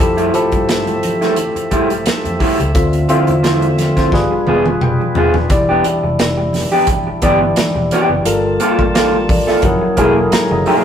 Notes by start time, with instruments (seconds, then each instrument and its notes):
0.00 fingered electric bass F2, tine electric piano F3 E4 G4 A4, tonewheel organ F3 C4 G4 A4 E5, muted clean electric guitar stroke
0.17 clean electric guitar G3 A3 E4, closed hi-hat
0.33 tine electric piano F3 E4 G4 A4, muted clean electric guitar stroke, closed hi-hat
0.52 fingered electric bass G2, muted clean electric guitar stroke, kick, closed hi-hat, high conga
0.68 muted clean electric guitar stroke, snare, closed hi-hat, muted conga
0.86 muted clean electric guitar stroke, closed hi-hat, high conga
1.03 closed hi-hat, muted conga, low conga
1.21 clean electric guitar G3 A3 E4, snare, closed hi-hat
1.36 muted clean electric guitar stroke, closed hi-hat, muted conga, low conga
1.55 muted clean electric guitar stroke, muted fingered electric bass stroke, closed hi-hat
1.71 fingered electric bass A2, clean electric guitar G3 A3 E4, kick, closed hi-hat, muted conga, high conga
1.90 muted clean electric guitar stroke, closed hi-hat
2.06 muted fingered electric bass stroke, snare, closed hi-hat, high conga
2.25 fingered electric bass F2, muted clean electric guitar stroke, closed hi-hat, low conga
2.40 clean electric guitar G3 A3 E4, kick, open hi-hat, muted conga
2.59 fingered electric bass C#2, muted clean electric guitar stroke, closed hi-hat
2.75 fingered electric bass D2, tine electric piano D3 C4 F4 E5, tonewheel organ D3 A3 F4, kick, closed hi-hat, muted conga
2.93 closed hi-hat
3.08 tine electric piano D3 C4 F4 E5, clean electric guitar F3 C4 E4, closed hi-hat, muted conga
3.27 fingered electric bass E2, closed hi-hat, high conga
3.43 clean electric guitar F3 C4 E4, snare, closed hi-hat, muted conga
3.61 closed hi-hat, high conga
3.78 muted clean electric guitar stroke, snare, closed hi-hat, low conga
3.96 clean electric guitar F3 C4 E4, kick, snare, closed hi-hat
4.12 fingered electric bass G1, tonewheel organ G3 D4 G#4 B4, tine electric piano G3 F4 G#4 B4, kick, snare, muted conga, low conga
4.31 muted clean electric guitar stroke, muted fingered electric bass stroke
4.47 fingered electric bass E1, clean electric guitar B3 F4 G#4, high tom, muted conga, high conga
4.66 muted clean electric guitar stroke, high tom
4.81 fingered electric bass F1, tine electric piano G5, mid tom, high conga
5.00 muted clean electric guitar stroke, low conga
5.15 fingered electric bass D#1, clean electric guitar B3 F4 G#4, tine electric piano E5, floor tom, muted conga
5.34 muted clean electric guitar stroke, floor tom
5.49 fingered electric bass E1, tine electric piano E3 E4 G4 D5, tonewheel organ G3 D4 E4, muted clean electric guitar stroke, kick, closed hi-hat, muted conga
5.69 clean electric guitar B3 D4 G4
5.84 muted clean electric guitar stroke, closed hi-hat, muted conga
6.03 fingered electric bass F1, muted clean electric guitar stroke, high conga
6.19 muted clean electric guitar stroke, snare, closed hi-hat
6.37 muted clean electric guitar stroke, high conga
6.53 snare, open hi-hat, muted conga, low conga
6.72 clean electric guitar B3 D4 G4
6.87 muted clean electric guitar stroke, kick, closed hi-hat, muted conga, low conga
7.07 muted fingered electric bass stroke, muted clean electric guitar stroke
7.22 fingered electric bass G1, tine electric piano E3 E4 G4 D5, clean electric guitar B3 D4 G4, kick, closed hi-hat, high conga
7.41 muted clean electric guitar stroke
7.56 snare, closed hi-hat, muted conga, high conga
7.75 fingered electric bass E1, muted clean electric guitar stroke, low conga
7.91 clean electric guitar B3 D4 G4, closed hi-hat, muted conga
8.09 fingered electric bass F#1, muted clean electric guitar stroke
8.24 fingered electric bass G1, tine electric piano G3 F4 A4 A#4, tonewheel organ G3 A#3 F4 A5, closed hi-hat, muted conga
8.60 clean electric guitar A#3 F4 A4, closed hi-hat
8.78 fingered electric bass A1, kick, high conga
8.94 clean electric guitar A#3 F4 A4, snare, closed hi-hat, muted conga
9.14 high conga
9.29 tine electric piano D5, muted clean electric guitar stroke, kick, open hi-hat, muted conga, low conga
9.47 clean electric guitar A#3 F4 A4, tine electric piano E5, snare
9.62 fingered electric bass F#1, tonewheel organ F#3 C#4 E4 G#4, tine electric piano F#3 E4 G#4 A#4 F#5, kick, closed hi-hat, muted conga, low conga
9.81 muted fingered electric bass stroke, muted clean electric guitar stroke
9.97 fingered electric bass E1, tine electric piano F#3 E4 G#4 A4 G#5, clean electric guitar A#3 E4 G#4, kick, closed hi-hat, muted conga, high conga
10.06 tine electric piano A#4
10.16 muted clean electric guitar stroke
10.31 tine electric piano A#5, muted fingered electric bass stroke, snare, closed hi-hat, muted conga, high conga
10.50 fingered electric bass F#1, tine electric piano D#5, muted clean electric guitar stroke, low conga
10.66 clean electric guitar A#3 E4 G#4, tine electric piano E5 A#5, open hi-hat, muted conga